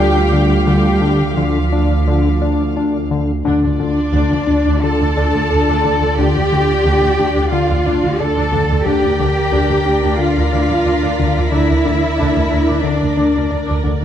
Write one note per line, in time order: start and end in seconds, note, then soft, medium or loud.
0.00 3.21 D2 medium
0.00 3.43 D2 medium
0.00 1.21 D3 medium
0.00 0.65 G3 medium
0.00 0.18 D4 medium
0.00 1.21 F4 medium
0.00 0.66 G4 medium
0.00 3.22 F5 medium
0.00 0.66 G5 medium
0.00 3.07 D6 medium
0.00 2.39 B6 medium
0.33 0.54 D3 medium
0.66 0.88 D3 medium
0.66 1.35 G3 medium
0.66 1.36 G4 medium
0.66 1.36 G5 medium
1.02 1.23 D3 medium
1.37 1.58 D3 medium
1.37 3.11 D3 soft
1.37 2.77 F3 soft
1.37 3.10 F4 soft
1.37 2.77 F4 soft
1.37 2.77 F5 soft
1.72 1.93 D4 medium
2.08 2.28 D3 medium
2.42 2.63 D4 medium
2.77 2.97 D4 medium
3.11 3.32 D3 medium
3.45 3.53 D2 soft
3.45 8.82 D2 medium
3.45 3.65 D3 medium
3.45 3.62 D4 medium
3.45 8.82 F4 soft
3.45 8.82 D5 soft
3.63 3.70 D2 soft
3.63 3.71 D4 soft
3.79 3.86 D2 soft
3.79 4.00 D3 medium
3.79 4.79 D4 medium
3.79 3.88 D4 soft
3.79 4.79 D5 medium
4.13 4.20 D2 medium
4.13 4.34 D3 medium
4.13 4.30 D4 medium
4.31 4.38 D2 soft
4.31 4.39 D4 soft
4.47 4.56 D2 soft
4.47 4.68 D4 medium
4.47 4.56 D4 soft
4.66 4.73 D2 medium
4.66 4.82 D4 soft
4.82 5.03 D3 medium
4.82 6.17 A4 medium
4.82 6.17 A5 medium
5.01 5.07 D2 soft
5.01 5.07 D4 soft
5.17 5.24 D2 medium
5.17 5.32 D4 soft
5.17 5.37 D4 medium
5.33 5.41 D2 soft
5.33 5.40 D4 soft
5.50 5.58 D2 soft
5.50 5.70 D4 medium
5.50 5.57 D4 soft
5.68 5.74 D2 medium
5.68 5.83 D4 medium
5.84 5.91 D2 soft
5.84 6.04 D3 medium
5.84 5.90 D4 soft
6.01 6.08 D2 soft
6.01 6.08 D4 soft
6.17 6.24 D2 soft
6.17 6.38 D3 medium
6.17 6.33 D4 soft
6.17 7.52 G4 medium
6.17 7.49 G5 medium
6.34 6.41 D2 soft
6.34 6.41 D4 soft
6.52 6.59 D2 soft
6.52 6.72 D3 medium
6.52 6.58 D4 soft
6.84 6.92 D2 medium
6.84 7.06 D3 medium
6.84 7.00 D4 medium
7.01 7.08 D2 soft
7.01 7.08 D4 soft
7.19 7.25 D2 soft
7.19 7.39 D4 soft
7.19 7.26 D4 soft
7.34 7.41 D2 medium
7.34 7.51 D4 soft
7.51 7.72 D3 medium
7.51 8.18 F4 medium
7.51 8.17 F5 medium
7.69 7.76 D2 soft
7.69 7.75 D4 soft
7.85 7.92 D2 medium
7.85 8.06 D4 medium
7.85 8.01 D4 soft
8.02 8.09 D2 soft
8.02 8.11 D4 soft
8.18 8.25 D2 soft
8.18 8.26 D4 soft
8.18 8.40 D4 soft
8.18 8.85 A4 medium
8.18 8.85 A5 medium
8.35 8.42 D2 medium
8.35 8.51 D4 medium
8.52 8.59 D2 soft
8.52 8.72 D3 medium
8.52 8.59 D4 medium
8.69 8.76 D2 soft
8.69 8.77 D4 soft
8.85 14.05 D2 medium
8.85 8.93 D2 soft
8.85 9.06 D3 medium
8.85 9.02 D4 medium
8.85 10.19 G4 medium
8.85 14.05 A#4 medium
8.85 14.05 D5 soft
8.85 10.17 G5 medium
8.85 13.80 A#6 soft
8.85 13.14 B6 soft
9.03 9.09 D2 soft
9.03 9.10 D4 soft
9.19 9.26 D2 soft
9.19 9.39 D3 medium
9.19 9.26 D4 soft
9.52 9.59 D2 medium
9.52 9.72 D3 medium
9.52 9.67 D4 medium
9.68 9.75 D2 soft
9.68 9.75 D4 soft
9.85 9.93 D2 soft
9.85 9.92 D4 soft
9.85 10.06 D4 soft
10.03 10.10 D2 medium
10.03 10.18 D4 medium
10.18 10.39 D3 medium
10.18 11.52 F4 medium
10.18 11.53 F5 medium
10.36 10.43 D2 soft
10.36 10.44 D4 soft
10.52 10.59 D2 medium
10.52 10.68 D4 soft
10.52 10.73 D4 soft
10.69 10.76 D2 soft
10.69 10.75 D4 soft
10.85 10.93 D2 soft
10.85 10.92 D4 soft
10.85 11.06 D4 soft
11.02 11.09 D2 medium
11.02 11.17 D4 medium
11.18 11.26 D2 soft
11.18 11.39 D3 medium
11.18 11.25 D4 soft
11.36 11.43 D2 soft
11.36 11.42 D4 soft
11.50 11.60 D2 soft
11.50 11.72 D3 medium
11.50 11.67 D4 medium
11.50 12.82 E4 medium
11.50 12.81 E5 medium
11.69 11.77 D2 soft
11.69 11.76 D4 soft
11.85 11.93 D2 soft
11.85 12.05 D3 medium
11.85 11.92 D4 soft
12.18 12.27 D2 medium
12.18 12.39 D3 medium
12.18 12.34 D4 medium
12.35 12.43 D2 soft
12.35 12.42 D4 soft
12.51 12.60 D2 soft
12.51 12.71 D4 medium
12.51 12.58 D4 soft
12.68 12.75 D2 medium
12.68 12.83 D4 medium
12.83 13.04 D3 medium
12.83 13.50 D4 medium
12.83 13.50 D5 medium
13.01 13.09 D2 soft
13.01 13.07 D4 soft
13.16 13.25 D2 medium
13.16 13.32 D4 medium
13.16 13.37 D4 medium
13.33 13.42 D2 soft
13.33 13.40 D4 medium
13.49 13.58 D2 soft
13.49 13.56 D4 medium
13.49 13.70 D4 soft
13.66 13.74 D2 medium
13.66 13.82 D4 medium
13.83 13.91 D2 soft
13.83 14.03 D3 medium
13.83 13.90 D4 soft
14.01 14.05 D2 medium
14.01 14.05 D4 soft